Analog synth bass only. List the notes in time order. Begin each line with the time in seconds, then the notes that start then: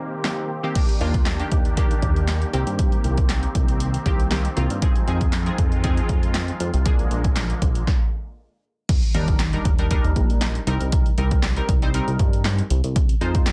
1.01 D#2
1.52 D#2
2.02 D#2
2.53 C2
2.67 G2
3.04 C2
3.55 C2
4.06 C2
4.57 C2
4.70 G2
5.08 F2
5.58 F2
6.09 F2
6.60 F2
6.74 C2
7.11 A#1
7.62 A#1
9.15 D#2
9.65 D#2
10.04 D#2
10.16 A#1
10.67 C2
10.81 C2
11.18 C2
11.69 C2
12.08 C2
12.19 G2
12.70 C2
12.84 C2
13.21 F2